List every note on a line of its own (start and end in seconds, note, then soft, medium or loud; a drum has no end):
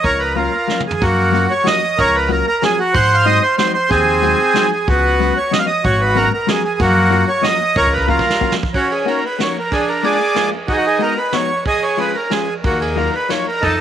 0.03 0.46 C#2 medium
0.03 0.33 A#4 medium
0.03 0.20 C#5 loud
0.03 kick medium
0.03 closed hi-hat soft
0.19 0.36 B4 medium
0.35 0.52 F#3 medium
0.35 0.52 A#3 soft
0.35 0.52 C#4 soft
0.35 0.82 F4 medium
0.35 0.53 F4 medium
0.35 0.81 A#4 medium
0.35 closed hi-hat soft
0.67 0.85 F#3 medium
0.67 0.85 A#3 soft
0.67 0.85 C#4 soft
0.67 0.85 F4 medium
0.67 snare soft
0.80 mid tom medium
0.87 1.03 G#4 medium
0.87 floor tom medium
1.00 1.44 F#2 medium
1.00 1.47 A#3 medium
1.00 1.52 F#4 loud
1.00 kick loud
1.00 closed hi-hat medium
1.32 1.50 F#3 medium
1.32 1.50 A#3 medium
1.32 1.50 C#4 medium
1.32 1.50 F4 medium
1.32 1.50 F#4 medium
1.32 closed hi-hat medium
1.51 1.67 C#5 loud
1.64 1.81 F#3 medium
1.64 1.82 A#3 soft
1.64 1.82 C#4 medium
1.64 1.82 F4 medium
1.64 1.82 F#4 medium
1.64 2.00 D#5 loud
1.64 snare medium
1.64 closed hi-hat soft
1.98 2.40 C#2 loud
1.98 2.30 A#4 medium
1.98 2.16 C#5 loud
1.98 kick medium
1.98 closed hi-hat soft
2.15 2.31 B4 medium
2.29 2.46 F#3 medium
2.29 2.46 A#3 medium
2.29 2.46 C#4 medium
2.29 2.46 F4 medium
2.29 2.46 F#4 medium
2.29 2.46 A#4 loud
2.29 closed hi-hat medium
2.47 2.63 A#4 loud
2.62 2.78 F#3 medium
2.62 2.78 A#3 medium
2.62 2.78 C#4 medium
2.62 2.79 F4 medium
2.62 2.79 F#4 medium
2.62 2.79 G#4 loud
2.62 snare medium
2.62 closed hi-hat soft
2.79 2.95 F#4 loud
2.94 3.36 G#2 loud
2.94 3.39 C5 medium
2.94 3.16 F#5 loud
2.94 kick loud
2.94 closed hi-hat soft
3.15 3.26 F5 loud
3.25 3.42 F#3 medium
3.25 3.42 G#3 medium
3.25 3.42 C4 medium
3.25 3.42 D#4 medium
3.25 3.42 F#4 medium
3.25 3.42 D#5 loud
3.25 closed hi-hat soft
3.42 3.56 C5 loud
3.57 3.74 F#3 medium
3.57 3.74 G#3 medium
3.57 3.74 C4 soft
3.57 3.74 D#4 medium
3.57 3.74 F#4 medium
3.57 3.72 C5 loud
3.57 snare medium
3.57 closed hi-hat soft
3.74 3.90 C5 medium
3.90 4.32 D#2 loud
3.90 4.67 C4 medium
3.90 4.71 G#4 loud
3.90 kick medium
3.90 closed hi-hat medium
4.22 4.39 F#3 medium
4.22 4.39 G#3 medium
4.22 4.39 C4 medium
4.22 4.39 D#4 soft
4.22 4.39 F#4 medium
4.22 closed hi-hat medium
4.54 4.71 F#3 medium
4.54 4.71 G#3 medium
4.54 4.71 C4 medium
4.54 4.71 D#4 medium
4.54 4.71 F#4 medium
4.54 snare medium
4.54 closed hi-hat soft
4.72 4.88 G#4 medium
4.88 5.30 C#2 medium
4.88 5.33 B3 medium
4.88 5.38 F#4 loud
4.88 kick medium
4.88 closed hi-hat soft
5.20 5.36 F#3 medium
5.20 5.36 G#3 medium
5.20 5.36 B3 medium
5.20 5.37 C#4 medium
5.20 5.36 F#4 medium
5.20 closed hi-hat medium
5.37 5.52 C#5 loud
5.51 5.68 F#3 medium
5.51 5.68 G#3 medium
5.51 5.68 B3 medium
5.51 5.68 C#4 medium
5.51 5.68 F#4 medium
5.51 5.59 D#5 loud
5.51 snare medium
5.51 closed hi-hat medium
5.59 5.66 F5 loud
5.66 5.85 D#5 loud
5.84 6.26 G#1 loud
5.84 6.29 F#4 medium
5.84 6.01 C#5 loud
5.84 kick medium
5.84 closed hi-hat soft
6.01 6.17 B4 medium
6.15 6.32 F#3 medium
6.15 6.32 G#3 medium
6.15 6.32 B3 medium
6.15 6.32 C#4 medium
6.15 6.32 F#4 medium
6.15 6.32 A#4 loud
6.15 closed hi-hat soft
6.34 6.49 A#4 medium
6.47 6.64 F#3 medium
6.47 6.64 G#3 medium
6.47 6.64 B3 soft
6.47 6.63 C#4 medium
6.47 6.64 F#4 medium
6.47 6.63 G#4 loud
6.47 snare medium
6.47 closed hi-hat soft
6.64 6.80 G#4 medium
6.80 7.21 F#2 loud
6.80 7.25 A#3 medium
6.80 7.29 F#4 loud
6.80 kick loud
6.80 closed hi-hat medium
7.10 7.27 F#3 medium
7.10 7.27 A#3 medium
7.10 7.27 C#4 medium
7.10 7.27 F4 medium
7.10 7.27 F#4 medium
7.10 closed hi-hat medium
7.28 7.44 C#5 loud
7.42 7.59 F#3 medium
7.42 7.59 A#3 medium
7.42 7.59 C#4 soft
7.42 7.59 F4 medium
7.42 7.59 F#4 medium
7.42 7.76 D#5 loud
7.42 snare medium
7.42 closed hi-hat medium
7.76 8.18 C#2 loud
7.76 8.06 A#4 medium
7.76 7.93 C#5 loud
7.76 kick medium
7.87 kick medium
7.93 8.09 B4 medium
7.98 kick medium
8.08 8.25 F#3 medium
8.08 8.24 A#3 medium
8.08 8.24 C#4 medium
8.08 8.24 F4 medium
8.08 8.54 F4 medium
8.08 8.25 F#4 medium
8.08 8.54 A#4 medium
8.08 kick medium
8.19 kick medium
8.30 snare medium
8.40 8.58 F#3 medium
8.40 8.57 A#3 medium
8.40 8.58 C#4 medium
8.40 8.58 F4 medium
8.40 8.58 F#4 medium
8.40 kick medium
8.52 snare medium
8.63 kick medium
8.74 9.20 C#4 medium
8.74 8.91 F#4 loud
8.74 kick medium
8.74 ride soft
8.92 9.06 G#4 medium
8.92 ride soft
9.05 9.23 A#3 medium
9.05 9.23 C#4 soft
9.05 9.23 D#4 medium
9.05 9.23 F#4 medium
9.05 9.24 A#4 medium
9.05 ride soft
9.25 9.41 B4 medium
9.39 9.55 A#3 medium
9.39 9.56 C#4 medium
9.39 9.56 D#4 soft
9.39 9.55 F#4 medium
9.39 9.57 C#5 medium
9.39 snare medium
9.39 ride soft
9.59 9.73 A#4 medium
9.72 10.17 D4 medium
9.72 9.89 G#4 loud
9.72 kick medium
9.72 ride medium
9.88 10.05 A#4 medium
9.88 ride soft
10.03 10.20 G#3 medium
10.03 10.20 A#3 medium
10.03 10.20 D4 medium
10.03 10.20 F4 medium
10.03 10.50 G#4 medium
10.03 10.50 D5 loud
10.03 ride soft
10.35 10.52 G#3 medium
10.35 10.52 A#3 medium
10.35 10.52 D4 medium
10.35 10.53 F4 medium
10.35 snare medium
10.35 ride soft
10.68 11.14 D#4 medium
10.68 10.73 F#4 loud
10.68 kick medium
10.68 ride soft
10.72 10.77 G#4 medium
10.77 10.85 F#4 loud
10.85 11.02 G#4 medium
10.85 ride soft
10.99 11.16 G#3 medium
10.99 11.16 B3 soft
10.99 11.17 D#4 medium
10.99 11.17 F#4 medium
10.99 11.18 A#4 loud
10.99 ride soft
11.18 11.34 B4 medium
11.32 11.49 G#3 medium
11.32 11.50 B3 medium
11.32 11.50 D#4 soft
11.32 11.50 F#4 medium
11.32 11.64 C#5 loud
11.32 snare medium
11.32 ride soft
11.65 12.12 G#4 medium
11.65 11.84 D#5 loud
11.65 kick medium
11.65 ride soft
11.82 11.99 C#5 medium
11.82 ride soft
11.97 12.14 F3 medium
11.97 12.15 G#3 medium
11.97 12.15 C#4 medium
11.97 12.15 F4 medium
11.97 12.16 B4 medium
11.97 ride soft
12.15 12.31 A#4 medium
12.30 12.47 F3 soft
12.30 12.47 G#3 soft
12.30 12.47 C#4 medium
12.30 12.48 F4 soft
12.30 12.54 G#4 medium
12.30 snare medium
12.30 ride soft
12.64 13.07 D#2 medium
12.64 13.10 A#3 medium
12.64 12.81 F#4 loud
12.64 kick medium
12.64 ride soft
12.81 12.97 G#4 medium
12.81 ride medium
12.96 13.13 F#3 medium
12.96 13.13 A#3 soft
12.96 13.13 D#4 medium
12.96 13.14 F4 medium
12.96 13.14 A#4 medium
12.96 ride soft
13.14 13.30 B4 medium
13.29 13.46 F#3 medium
13.29 13.46 A#3 soft
13.29 13.46 D#4 soft
13.29 13.46 F4 medium
13.29 13.47 C#5 medium
13.29 snare medium
13.29 ride soft
13.48 13.63 A#4 medium
13.62 13.81 F2 medium
13.62 13.81 D#4 medium
13.62 13.79 A4 loud
13.62 kick medium
13.62 ride medium